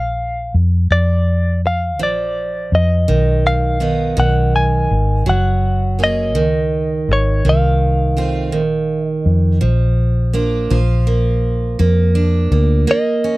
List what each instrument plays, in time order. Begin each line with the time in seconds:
Already playing: fingered electric bass A#1, clean electric guitar F5
0.54 fingered electric bass F2
0.91 fingered electric bass F2, clean electric guitar D5
1.67 clean electric guitar F5
1.99 fingered electric bass A#1, steel-string acoustic guitar F3, clean electric guitar D5
2.72 fingered electric bass F2, clean electric guitar D#5
3.08 fingered electric bass B1, steel-string acoustic guitar D#3
3.47 clean electric guitar F5
3.80 steel-string acoustic guitar D#3 B3 D#4
4.17 fingered electric bass B1, steel-string acoustic guitar D#3, clean electric guitar F#5
4.56 clean electric guitar G#5
4.91 fingered electric bass G#1
5.26 fingered electric bass F#1, steel-string acoustic guitar F#3, clean electric guitar F#5
5.99 steel-string acoustic guitar A#3 C#4 G#4
6.04 clean electric guitar D#5
6.35 fingered electric bass C#2, steel-string acoustic guitar D#3
7.09 fingered electric bass G#1
7.13 clean electric guitar C#5
7.45 fingered electric bass C2, steel-string acoustic guitar D#3
7.49 clean electric guitar F5
8.17 steel-string acoustic guitar A3 C4 F4
8.52 fingered electric bass A#1, steel-string acoustic guitar D#3
9.07 clean electric guitar D#5
9.26 fingered electric bass F2
9.61 fingered electric bass A#1, steel-string acoustic guitar F3
10.33 steel-string acoustic guitar A#3 D4 F4
10.70 fingered electric bass A#1, steel-string acoustic guitar F3 F4
11.07 steel-string acoustic guitar A#3
11.79 fingered electric bass F2, steel-string acoustic guitar A#3
12.15 steel-string acoustic guitar D4
12.51 fingered electric bass D2, steel-string acoustic guitar A#3
12.87 steel-string acoustic guitar A#3, clean electric guitar D#5
13.24 steel-string acoustic guitar C#4